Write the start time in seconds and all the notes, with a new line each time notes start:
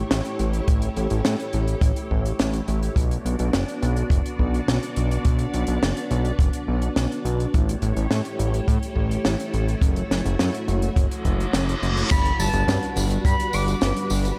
Already playing: A3 E4 G4 C#5
0.11 A1, snare, closed hi-hat
0.25 closed hi-hat
0.39 A1, closed hi-hat
0.53 closed hi-hat
0.68 A1, kick, closed hi-hat
0.82 closed hi-hat
0.96 A1, closed hi-hat
1.10 A1, closed hi-hat
1.25 A2, snare, closed hi-hat
1.40 closed hi-hat
1.53 A1, closed hi-hat
1.68 closed hi-hat
1.81 A1, kick, closed hi-hat
1.96 closed hi-hat
2.11 A1, kick
2.25 closed hi-hat
2.39 A1, snare, closed hi-hat
2.53 closed hi-hat
2.68 A1, closed hi-hat
2.83 closed hi-hat
2.96 B1 B3 D4 F#4 D5, kick, closed hi-hat
3.11 closed hi-hat
3.25 B1, closed hi-hat
3.39 B1, closed hi-hat
3.53 F#1, snare, closed hi-hat
3.68 closed hi-hat
3.82 B1, closed hi-hat
3.96 closed hi-hat
4.10 F#1, kick, closed hi-hat
4.26 closed hi-hat
4.39 B1, kick
4.54 closed hi-hat
4.68 B1, snare, closed hi-hat
4.83 closed hi-hat
4.96 B1, closed hi-hat
5.11 closed hi-hat
5.25 B1, kick, closed hi-hat
5.39 closed hi-hat
5.54 B1, closed hi-hat
5.67 B1, closed hi-hat
5.82 F#1, snare, closed hi-hat
5.97 closed hi-hat
6.11 B1, closed hi-hat
6.25 closed hi-hat
6.39 F#1, kick, closed hi-hat
6.53 closed hi-hat
6.68 B1
6.82 closed hi-hat
6.96 B1, snare, closed hi-hat
7.12 closed hi-hat
7.25 B1, closed hi-hat
7.40 closed hi-hat
7.54 A1 A3 E4 G4 C#5, kick, closed hi-hat
7.69 closed hi-hat
7.82 A1, closed hi-hat
7.96 A1, closed hi-hat
8.11 A2, snare, closed hi-hat
8.25 closed hi-hat
8.39 A1, closed hi-hat
8.54 closed hi-hat
8.68 A2, kick, closed hi-hat
8.83 closed hi-hat
8.96 A1, kick
9.11 closed hi-hat
9.25 A1, snare, closed hi-hat
9.40 closed hi-hat
9.54 A1, closed hi-hat
9.68 closed hi-hat
9.81 F#1 F#4, kick, closed hi-hat
9.96 closed hi-hat
10.11 F#1, snare, closed hi-hat
10.25 F#1, closed hi-hat
10.39 F#2, snare, closed hi-hat
10.54 closed hi-hat
10.68 F#1, closed hi-hat
10.82 closed hi-hat
10.96 F#1, kick, closed hi-hat, reverse cymbal
11.11 closed hi-hat
11.25 F#1, kick, closed hi-hat
11.40 closed hi-hat
11.53 F#1, snare, closed hi-hat
11.69 closed hi-hat
11.82 F#1, closed hi-hat
11.97 closed hi-hat
12.10 G1 G3 D4 F#4 B4 B5 B6, kick, closed hi-hat, crash, tambourine, impact
12.25 closed hi-hat
12.39 G1 A5 A6, open hi-hat, tambourine
12.53 G1, closed hi-hat, tambourine
12.68 G2, snare, closed hi-hat, tambourine
12.83 closed hi-hat
12.96 G1, open hi-hat, tambourine
13.10 closed hi-hat, tambourine
13.25 G2 B5 B6, kick, closed hi-hat, tambourine
13.40 closed hi-hat
13.53 G1 D6 D7, open hi-hat, tambourine
13.68 closed hi-hat, tambourine
13.81 G1, snare, closed hi-hat, tambourine
13.96 closed hi-hat
14.10 G1, open hi-hat, tambourine
14.25 closed hi-hat, tambourine